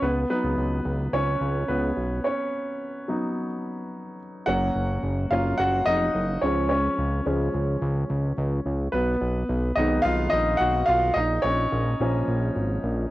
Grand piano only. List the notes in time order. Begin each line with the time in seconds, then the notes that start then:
0.02 B3 B4
0.30 F#3 B3 D#4 B4
1.13 C#4 C#5
1.68 B3 B4
2.24 C#4 C#5
3.08 F#3 B3 D#4
4.46 F#3 A#3 C#4 F#4 F#5
5.31 F#3 A#3 C#4 F4 F5
5.58 F#4 F#5
5.86 D#4 D#5
6.41 F3 G#3 C#4 C#5
6.69 C#4 C#5
7.26 F3 G#3 C#4
8.92 B3 B4
9.75 D#3 G#3 B3 D#4 D#5
10.02 F4 F5
10.30 D#4 D#5
10.57 F#4 F#5
10.86 F4 F5
11.14 D#4 D#5
11.42 C#4 C#5
12.00 F3 A#3 C#4